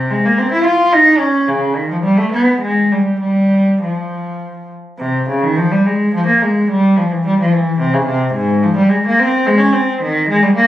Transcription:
0.00 0.11 C3 medium
0.10 0.25 G#3 medium
0.25 0.39 A#3 medium
0.38 0.52 C4 medium
0.52 0.66 E4 medium
0.65 0.92 F4 medium
0.93 1.20 D#4 loud
1.18 1.47 C#4 medium
1.48 1.76 C#3 medium
1.76 1.90 D#3 medium
1.91 1.96 F3 medium
2.03 2.17 G3 medium
2.17 2.32 A3 medium
2.33 2.60 B3 medium
2.62 2.89 G#3 medium
2.92 3.19 G3 medium
3.20 3.79 G3 medium
3.83 4.71 F3 soft
4.99 5.25 C3 medium
5.29 5.42 C#3 medium
5.42 5.56 D#3 medium
5.57 5.70 F3 medium
5.71 5.84 G3 medium
5.86 6.12 G#3 medium
6.14 6.26 F3 medium
6.26 6.39 A#3 medium
6.42 6.68 G#3 medium
6.71 6.96 G3 medium
6.97 7.09 F3 medium
7.11 7.23 E3 medium
7.26 7.37 G3 medium
7.40 7.51 F3 medium
7.53 7.79 E3 medium
7.79 7.91 C3 medium
7.94 8.06 C#3 medium
8.06 8.32 C3 medium
8.34 8.60 G#2 medium
8.63 8.75 F3 medium
8.76 8.88 G3 medium
8.89 9.02 G#3 medium
9.07 9.17 A#3 medium
9.19 9.44 C4 medium
9.47 9.58 G#3 medium
9.58 9.71 C#4 medium
9.73 10.00 C4 medium
10.02 10.28 D#3 medium
10.29 10.41 G#3 medium
10.43 10.55 G3 medium
10.55 10.67 A#3 loud

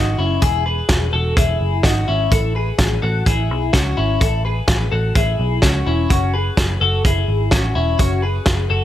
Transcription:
0.00 0.14 G#1 medium
0.00 0.19 D#4 medium
0.00 0.19 F#4 medium
0.19 0.38 F#1 medium
0.19 0.43 C#4 medium
0.19 0.41 E4 medium
0.42 0.81 E1 medium
0.42 0.65 E4 medium
0.42 0.65 G#4 medium
0.42 kick medium
0.42 closed hi-hat medium
0.66 1.11 G#4 soft
0.66 1.10 B4 medium
0.89 1.09 E1 medium
0.89 kick medium
0.89 snare loud
0.89 closed hi-hat medium
1.13 1.33 E1 medium
1.13 1.36 F#4 medium
1.13 1.37 A4 medium
1.37 1.57 E1 medium
1.37 1.82 E4 medium
1.37 1.81 G#4 medium
1.37 kick loud
1.37 closed hi-hat medium
1.61 1.80 F#1 medium
1.83 2.04 G#1 medium
1.83 2.08 D#4 soft
1.83 2.08 F#4 medium
1.83 kick loud
1.83 snare medium
1.83 closed hi-hat medium
2.08 2.28 G#1 medium
2.08 2.32 C#4 medium
2.08 2.32 E4 medium
2.31 2.71 A1 medium
2.31 2.55 E4 medium
2.31 2.55 A4 medium
2.31 kick medium
2.31 closed hi-hat medium
2.55 3.00 G#4 soft
2.55 3.00 B4 medium
2.79 2.98 A1 medium
2.79 kick loud
2.79 snare loud
2.79 closed hi-hat medium
3.02 3.22 A1 medium
3.02 3.27 F#4 medium
3.02 3.26 A4 medium
3.26 3.51 A1 medium
3.26 3.71 E4 soft
3.26 3.71 G#4 medium
3.26 kick loud
3.26 closed hi-hat medium
3.51 3.70 B1 medium
3.73 3.93 C#2 medium
3.73 3.97 C#4 soft
3.73 3.97 F#4 medium
3.73 kick medium
3.73 snare medium
3.73 closed hi-hat medium
3.97 4.17 G#1 medium
3.97 4.21 C#4 medium
3.97 4.20 E4 medium
4.21 4.60 A1 medium
4.21 4.44 E4 medium
4.21 4.44 A4 medium
4.21 kick loud
4.21 closed hi-hat medium
4.45 4.90 G#4 soft
4.45 4.89 B4 medium
4.68 4.88 A1 medium
4.68 kick loud
4.68 snare loud
4.68 closed hi-hat medium
4.92 5.12 A1 medium
4.92 5.16 F#4 soft
4.92 5.15 A4 medium
5.15 5.35 A1 medium
5.15 5.60 E4 medium
5.15 5.60 G#4 medium
5.15 kick loud
5.15 closed hi-hat medium
5.40 5.59 B1 medium
5.62 5.82 C#2 medium
5.62 5.86 C#4 medium
5.62 5.87 F#4 medium
5.62 kick medium
5.62 snare medium
5.62 closed hi-hat medium
5.87 6.06 E1 medium
5.87 6.09 C#4 medium
5.87 6.10 E4 medium
6.10 6.49 F#1 loud
6.10 6.34 C#4 medium
6.10 6.34 F#4 medium
6.10 kick medium
6.10 closed hi-hat medium
6.34 6.79 G#4 soft
6.34 6.78 B4 medium
6.57 6.77 F#1 medium
6.57 kick loud
6.57 snare medium
6.57 closed hi-hat medium
6.81 7.01 F#1 medium
6.81 7.04 F#4 medium
6.81 7.05 A4 medium
7.05 7.24 F#1 medium
7.05 7.50 E4 soft
7.05 7.49 G#4 medium
7.05 kick loud
7.05 closed hi-hat medium
7.28 7.48 G#1 medium
7.51 7.72 A1 medium
7.51 7.75 C#4 medium
7.51 7.76 F#4 medium
7.51 kick medium
7.51 snare loud
7.51 closed hi-hat medium
7.75 7.95 E1 medium
7.75 7.98 C#4 medium
7.75 7.99 E4 medium
7.99 8.38 F#1 medium
7.99 8.23 C#4 medium
7.99 8.23 F#4 medium
7.99 kick medium
7.99 closed hi-hat medium
8.22 8.68 G#4 soft
8.22 8.67 B4 medium
8.46 8.66 F#1 medium
8.46 kick loud
8.46 snare loud
8.46 closed hi-hat medium
8.70 8.84 F#1 medium
8.70 8.84 F#4 medium
8.70 8.84 A4 medium

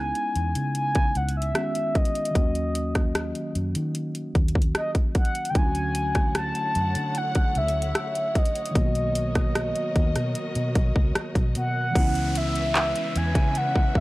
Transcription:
0.00 0.11 C#2 loud
0.00 1.50 G#3 medium
0.00 1.51 B3 medium
0.00 1.52 C#4 medium
0.00 1.49 D#4 medium
0.00 1.53 E4 medium
0.00 0.76 G#5 loud
0.15 closed hi-hat soft
0.36 0.54 E2 medium
0.36 closed hi-hat soft
0.55 1.12 C#3 medium
0.55 closed hi-hat medium
0.75 1.18 G#5 loud
0.75 closed hi-hat medium
0.95 kick medium
0.95 closed hi-hat medium
1.15 1.52 C#2 medium
1.15 1.36 F#5 medium
1.15 closed hi-hat soft
1.29 closed hi-hat medium
1.37 1.99 E5 medium
1.42 closed hi-hat medium
1.53 2.30 D#3 soft
1.53 2.35 G#3 soft
1.53 2.35 B3 soft
1.53 2.36 C#4 soft
1.53 cross-stick loud
1.53 closed hi-hat medium
1.57 2.36 F#4 medium
1.75 closed hi-hat soft
1.95 3.56 D#5 medium
1.95 kick loud
1.95 closed hi-hat medium
2.05 closed hi-hat medium
2.15 closed hi-hat medium
2.25 closed hi-hat medium
2.31 5.49 D#3 medium
2.31 5.50 F#3 medium
2.35 3.31 D#2 loud
2.35 5.51 A#3 medium
2.35 5.52 C#4 medium
2.35 kick loud
2.35 closed hi-hat medium
2.39 5.53 F#4 medium
2.55 closed hi-hat soft
2.75 closed hi-hat medium
2.95 kick medium
2.95 cross-stick medium
2.95 closed hi-hat soft
3.15 cross-stick loud
3.15 closed hi-hat medium
3.35 closed hi-hat soft
3.55 3.73 F#2 medium
3.55 closed hi-hat soft
3.75 4.31 D#3 medium
3.75 closed hi-hat medium
3.95 closed hi-hat medium
4.15 closed hi-hat medium
4.35 4.71 D#2 medium
4.35 kick medium
4.35 closed hi-hat soft
4.48 closed hi-hat medium
4.55 kick medium
4.62 closed hi-hat medium
4.75 4.91 D#5 medium
4.75 cross-stick loud
4.75 closed hi-hat medium
4.95 kick medium
4.95 closed hi-hat medium
5.15 5.51 F#5 loud
5.15 kick loud
5.15 closed hi-hat medium
5.25 closed hi-hat medium
5.35 closed hi-hat medium
5.45 closed hi-hat medium
5.50 8.69 D3 medium
5.50 8.70 F#3 medium
5.50 5.59 G5 medium
5.55 6.51 D2 loud
5.55 8.72 D3 medium
5.55 8.72 A3 medium
5.55 8.71 A3 medium
5.55 8.72 C#4 medium
5.55 8.72 E4 medium
5.55 11.91 C#5 medium
5.55 8.72 F#5 medium
5.55 6.36 G#5 loud
5.55 kick loud
5.55 closed hi-hat medium
5.59 5.64 E4 medium
5.66 8.77 F#4 medium
5.75 closed hi-hat soft
5.95 closed hi-hat medium
6.15 kick loud
6.15 cross-stick medium
6.15 closed hi-hat soft
6.35 7.19 A5 loud
6.35 cross-stick loud
6.35 closed hi-hat medium
6.55 closed hi-hat soft
6.75 6.94 F#2 medium
6.75 closed hi-hat soft
6.95 7.57 D3 medium
6.95 closed hi-hat medium
7.15 7.59 F#5 loud
7.15 closed hi-hat medium
7.35 kick medium
7.35 closed hi-hat soft
7.55 7.92 D2 medium
7.55 8.39 E5 loud
7.55 closed hi-hat soft
7.68 closed hi-hat medium
7.82 closed hi-hat medium
7.95 cross-stick loud
7.95 closed hi-hat medium
8.15 closed hi-hat soft
8.35 11.17 D#5 medium
8.35 kick medium
8.35 closed hi-hat medium
8.45 closed hi-hat medium
8.55 closed hi-hat medium
8.66 closed hi-hat medium
8.71 11.89 D#3 medium
8.71 11.90 F#3 medium
8.75 9.71 B1 loud
8.75 11.92 B2 medium
8.75 11.91 A#3 medium
8.75 11.92 B3 medium
8.75 11.92 F#4 medium
8.75 11.92 A#4 medium
8.75 11.92 D#5 medium
8.75 kick loud
8.75 closed hi-hat medium
8.80 8.84 F4 medium
8.86 11.97 F#4 medium
8.95 closed hi-hat soft
9.15 closed hi-hat medium
9.35 kick loud
9.35 cross-stick medium
9.35 closed hi-hat soft
9.55 cross-stick loud
9.55 closed hi-hat medium
9.76 closed hi-hat soft
9.96 10.14 D#2 medium
9.96 kick medium
9.96 closed hi-hat soft
10.16 10.34 B2 loud
10.16 cross-stick medium
10.16 closed hi-hat medium
10.35 closed hi-hat medium
10.55 10.74 B2 medium
10.55 closed hi-hat soft
10.75 10.94 B1 medium
10.75 kick loud
10.75 closed hi-hat medium
10.96 11.14 C#2 medium
10.96 kick medium
11.15 muted fingered electric bass stroke soft
11.15 cross-stick loud
11.15 closed hi-hat medium
11.35 11.53 B1 medium
11.35 kick medium
11.35 closed hi-hat medium
11.55 11.92 B2 medium
11.55 12.39 F#5 loud
11.55 closed hi-hat medium
11.91 14.00 E3 medium
11.91 14.00 G#3 medium
11.95 12.92 C#2 loud
11.95 14.00 C#3 medium
11.95 14.00 B3 medium
11.95 14.00 C#4 medium
11.95 14.00 B4 medium
11.95 14.00 E5 medium
11.95 kick loud
11.95 closed hi-hat medium
11.95 downlifter medium
11.99 14.00 E4 medium
12.15 closed hi-hat soft
12.35 13.19 E5 loud
12.35 closed hi-hat medium
12.55 closed hi-hat soft
12.75 clap loud
12.75 closed hi-hat medium
12.95 closed hi-hat soft
13.16 13.34 E2 loud
13.16 13.59 G#5 loud
13.16 closed hi-hat medium
13.35 13.91 C#3 loud
13.35 kick loud
13.35 closed hi-hat medium
13.55 13.99 F#5 loud
13.55 closed hi-hat medium
13.76 kick loud
13.95 14.00 C#2 medium
13.95 kick loud

